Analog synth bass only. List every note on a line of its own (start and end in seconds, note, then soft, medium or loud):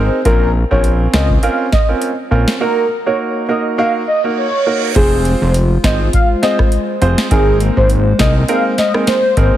0.25 0.64 A#1 loud
0.71 1.07 A#1 loud
1.14 1.39 C#2 loud
2.31 2.45 A#1 medium
4.96 5.35 F1 loud
5.42 5.78 F1 loud
5.84 6.09 G#1 medium
7.02 7.16 F1 loud
7.31 7.70 G#1 loud
7.77 8.13 G#1 loud
8.19 8.44 C2 loud
9.37 9.51 G#1 loud